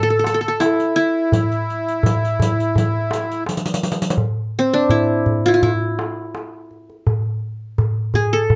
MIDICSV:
0, 0, Header, 1, 5, 480
1, 0, Start_track
1, 0, Tempo, 716846
1, 888, Time_signature, 4, 2, 24, 8
1, 5728, End_track
2, 0, Start_track
2, 0, Title_t, "Qanun"
2, 0, Program_c, 0, 107
2, 0, Note_on_c, 0, 71, 80
2, 20, Note_on_c, 0, 69, 72
2, 66, Note_off_c, 0, 69, 0
2, 68, Note_on_c, 0, 69, 49
2, 127, Note_off_c, 0, 69, 0
2, 129, Note_on_c, 0, 69, 53
2, 166, Note_off_c, 0, 71, 0
2, 174, Note_off_c, 0, 69, 0
2, 177, Note_on_c, 0, 69, 54
2, 227, Note_off_c, 0, 69, 0
2, 230, Note_on_c, 0, 69, 61
2, 271, Note_off_c, 0, 69, 0
2, 274, Note_on_c, 0, 69, 53
2, 320, Note_off_c, 0, 69, 0
2, 322, Note_on_c, 0, 69, 61
2, 402, Note_on_c, 0, 64, 73
2, 639, Note_off_c, 0, 64, 0
2, 642, Note_on_c, 0, 64, 79
2, 1107, Note_off_c, 0, 69, 0
2, 2297, Note_off_c, 0, 64, 0
2, 3071, Note_on_c, 0, 60, 77
2, 3171, Note_on_c, 0, 62, 84
2, 3284, Note_on_c, 0, 64, 82
2, 3654, Note_on_c, 0, 65, 82
2, 3667, Note_off_c, 0, 64, 0
2, 3670, Note_on_c, 0, 64, 75
2, 3706, Note_off_c, 0, 65, 0
2, 3708, Note_on_c, 0, 65, 79
2, 3749, Note_off_c, 0, 64, 0
2, 3768, Note_on_c, 0, 64, 82
2, 3808, Note_off_c, 0, 65, 0
2, 4143, Note_off_c, 0, 60, 0
2, 4170, Note_off_c, 0, 62, 0
2, 4709, Note_off_c, 0, 64, 0
2, 5458, Note_on_c, 0, 68, 71
2, 5577, Note_on_c, 0, 69, 85
2, 5617, Note_off_c, 0, 68, 0
2, 5728, Note_off_c, 0, 69, 0
2, 5728, End_track
3, 0, Start_track
3, 0, Title_t, "Accordion"
3, 0, Program_c, 1, 21
3, 0, Note_on_c, 1, 69, 80
3, 407, Note_on_c, 1, 64, 69
3, 426, Note_off_c, 1, 69, 0
3, 639, Note_off_c, 1, 64, 0
3, 649, Note_on_c, 1, 64, 81
3, 2301, Note_off_c, 1, 64, 0
3, 5728, End_track
4, 0, Start_track
4, 0, Title_t, "Darbuka"
4, 44, Note_on_c, 9, 62, 30
4, 111, Note_off_c, 9, 62, 0
4, 162, Note_on_c, 9, 63, 75
4, 229, Note_off_c, 9, 63, 0
4, 287, Note_on_c, 9, 62, 25
4, 354, Note_off_c, 9, 62, 0
4, 407, Note_on_c, 9, 63, 74
4, 474, Note_off_c, 9, 63, 0
4, 528, Note_on_c, 9, 62, 24
4, 595, Note_off_c, 9, 62, 0
4, 885, Note_on_c, 9, 64, 78
4, 952, Note_off_c, 9, 64, 0
4, 1006, Note_on_c, 9, 62, 23
4, 1073, Note_off_c, 9, 62, 0
4, 1361, Note_on_c, 9, 64, 88
4, 1428, Note_off_c, 9, 64, 0
4, 1486, Note_on_c, 9, 62, 22
4, 1553, Note_off_c, 9, 62, 0
4, 1604, Note_on_c, 9, 64, 81
4, 1671, Note_off_c, 9, 64, 0
4, 1725, Note_on_c, 9, 62, 23
4, 1792, Note_off_c, 9, 62, 0
4, 1845, Note_on_c, 9, 64, 75
4, 1912, Note_off_c, 9, 64, 0
4, 1964, Note_on_c, 9, 62, 28
4, 2031, Note_off_c, 9, 62, 0
4, 2081, Note_on_c, 9, 63, 78
4, 2148, Note_off_c, 9, 63, 0
4, 2320, Note_on_c, 9, 63, 71
4, 2387, Note_off_c, 9, 63, 0
4, 2444, Note_on_c, 9, 62, 27
4, 2511, Note_off_c, 9, 62, 0
4, 2558, Note_on_c, 9, 62, 24
4, 2625, Note_off_c, 9, 62, 0
4, 2795, Note_on_c, 9, 64, 76
4, 2862, Note_off_c, 9, 64, 0
4, 3277, Note_on_c, 9, 64, 77
4, 3344, Note_off_c, 9, 64, 0
4, 3523, Note_on_c, 9, 64, 64
4, 3590, Note_off_c, 9, 64, 0
4, 3766, Note_on_c, 9, 64, 73
4, 3833, Note_off_c, 9, 64, 0
4, 3889, Note_on_c, 9, 62, 29
4, 3956, Note_off_c, 9, 62, 0
4, 4010, Note_on_c, 9, 63, 74
4, 4077, Note_off_c, 9, 63, 0
4, 4250, Note_on_c, 9, 63, 62
4, 4317, Note_off_c, 9, 63, 0
4, 4491, Note_on_c, 9, 62, 27
4, 4558, Note_off_c, 9, 62, 0
4, 4617, Note_on_c, 9, 62, 26
4, 4684, Note_off_c, 9, 62, 0
4, 4732, Note_on_c, 9, 64, 86
4, 4798, Note_off_c, 9, 64, 0
4, 5211, Note_on_c, 9, 64, 85
4, 5278, Note_off_c, 9, 64, 0
4, 5449, Note_on_c, 9, 64, 73
4, 5516, Note_off_c, 9, 64, 0
4, 5691, Note_on_c, 9, 64, 91
4, 5728, Note_off_c, 9, 64, 0
4, 5728, End_track
5, 0, Start_track
5, 0, Title_t, "Riq"
5, 178, Note_on_c, 9, 54, 44
5, 245, Note_off_c, 9, 54, 0
5, 410, Note_on_c, 9, 54, 49
5, 477, Note_off_c, 9, 54, 0
5, 534, Note_on_c, 9, 54, 21
5, 601, Note_off_c, 9, 54, 0
5, 655, Note_on_c, 9, 54, 18
5, 722, Note_off_c, 9, 54, 0
5, 893, Note_on_c, 9, 54, 66
5, 960, Note_off_c, 9, 54, 0
5, 1015, Note_on_c, 9, 54, 16
5, 1082, Note_off_c, 9, 54, 0
5, 1140, Note_on_c, 9, 54, 17
5, 1207, Note_off_c, 9, 54, 0
5, 1261, Note_on_c, 9, 54, 18
5, 1328, Note_off_c, 9, 54, 0
5, 1380, Note_on_c, 9, 54, 67
5, 1447, Note_off_c, 9, 54, 0
5, 1505, Note_on_c, 9, 54, 19
5, 1572, Note_off_c, 9, 54, 0
5, 1622, Note_on_c, 9, 54, 66
5, 1689, Note_off_c, 9, 54, 0
5, 1742, Note_on_c, 9, 54, 19
5, 1809, Note_off_c, 9, 54, 0
5, 1861, Note_on_c, 9, 54, 66
5, 1928, Note_off_c, 9, 54, 0
5, 2098, Note_on_c, 9, 54, 51
5, 2165, Note_off_c, 9, 54, 0
5, 2220, Note_on_c, 9, 54, 18
5, 2287, Note_off_c, 9, 54, 0
5, 2335, Note_on_c, 9, 54, 58
5, 2392, Note_off_c, 9, 54, 0
5, 2392, Note_on_c, 9, 54, 57
5, 2448, Note_off_c, 9, 54, 0
5, 2448, Note_on_c, 9, 54, 70
5, 2504, Note_off_c, 9, 54, 0
5, 2504, Note_on_c, 9, 54, 78
5, 2567, Note_off_c, 9, 54, 0
5, 2567, Note_on_c, 9, 54, 75
5, 2622, Note_off_c, 9, 54, 0
5, 2622, Note_on_c, 9, 54, 81
5, 2689, Note_off_c, 9, 54, 0
5, 2691, Note_on_c, 9, 54, 73
5, 2747, Note_off_c, 9, 54, 0
5, 2747, Note_on_c, 9, 54, 94
5, 2814, Note_off_c, 9, 54, 0
5, 5728, End_track
0, 0, End_of_file